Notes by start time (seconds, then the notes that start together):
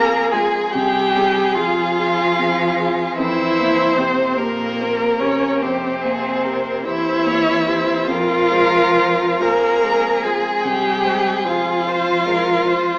Already playing: F2 A#3 C4 F4 G#4 A#4 A#5
0.32 G#3 F4 G#4 G#5
0.73 C3 G3 G4 G5
1.16 C4 G#4
1.55 F3 F4 G#4 F5
1.98 F4 G#4
2.38 C4 G#4
2.79 F4 G#4
3.17 F2 E3 E4 C5 E5
3.60 A#3 C5
3.97 C3 C4 G4 C5
4.36 A#2 A#3 G4 A#4 C5
4.80 A#3 C5
5.18 C#3 C#4 G4 C5 C#5
5.61 F2 C3 C4 G4 C5
6.03 A#3 G#4 C5
6.44 G4 A#4 C5
6.85 E3 E4 G4 C5 E5
7.26 A#3 C5 C#5
7.67 G4 C5
8.07 F2 F3 F4 A#4 F5
8.51 G#3 C5
8.95 F4 C5
9.40 A#3 F4 G#4 A#4 C5 A#5
9.83 G#3 C5
10.23 G#3 F4 G#4 C5 G#5
10.64 C3 G3 G4 G5
11.04 G#3 C5
11.44 F3 F4 C5 F5
11.85 F4 C5
12.26 G#3 A#4 C5
12.65 F4 C5